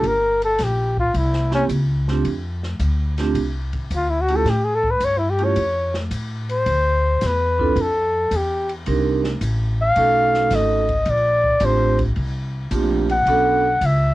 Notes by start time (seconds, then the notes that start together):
0.03 G1 A#4, ride
0.42 A4, ride
0.59 A#1, snare, hi-hat pedal, ride
0.64 G4
0.97 F4, kick
1.14 C2 E4, ride
1.33 snare
1.51 A#3 C4 C#4 E4 G4, snare
1.69 C#2, hi-hat pedal, ride
2.08 A3 C4 D4 F4 G4, snare
2.25 F2, ride
2.63 snare
2.79 D2, hi-hat pedal, ride
3.18 A3 C4 D4 F4 G4, snare, ride
3.34 C2, ride
3.73 kick, ride
3.90 D2, hi-hat pedal, ride
3.96 F4
4.10 E4
4.21 F#4
4.28 A3 C#4 E4 F4 G4, ride
4.36 A4
4.45 A2, snare, ride
4.50 G4
4.64 G#4
4.75 A4
4.84 kick
4.91 B4
5.00 G2 C#5, hi-hat pedal, ride
5.18 E4
5.30 G4
5.39 A3 C#4 E4 F4 G4, ride
5.45 C#5
5.56 F2, ride
5.94 snare
6.11 A2, hi-hat pedal, ride
6.49 C5, ride
6.66 D2, ride
7.21 E2, snare, hi-hat pedal, ride
7.26 B4
7.58 C4 D4 E4 F4 A4, kick
7.76 F2, ride
7.81 A4
8.31 E2, hi-hat pedal, ride
8.36 G4
8.69 ride
8.86 C2 C4 D4 D#4 G4 A#4, ride
9.24 snare
9.41 A1, hi-hat pedal, ride
9.82 F5
9.96 B1 A3 C#4 D#4 F#4 A4, ride
10.34 snare
10.51 G#1, snare, hi-hat pedal, ride
10.55 D#5
10.89 kick, ride
11.06 A#1, ride
11.10 D5
11.44 kick
11.60 A1 A3 C4 D4 F4 G4, hi-hat pedal, ride
11.65 C5
11.99 kick, ride
12.16 C2, ride
12.71 A#1 A3 C4 D4 F4 G4, hi-hat pedal, ride
13.09 F#5, ride
13.26 B1 B3 C#4 D4 F#4 A4, ride
13.81 C#2, hi-hat pedal, ride
13.85 E5